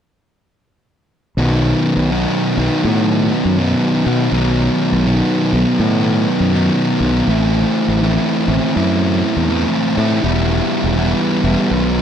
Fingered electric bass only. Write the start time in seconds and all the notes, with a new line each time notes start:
1.37 B1
1.97 B1
2.57 B1
2.84 A2
3.45 F#2
4.06 B2
4.32 B1
4.92 B1
5.53 B1
5.79 A2
6.40 F#2
7.00 B1
7.27 A1
7.88 A1
8.48 A1
8.76 F#2
9.37 E2
9.97 A2
10.24 E1
10.84 E1
11.44 E1
11.71 B1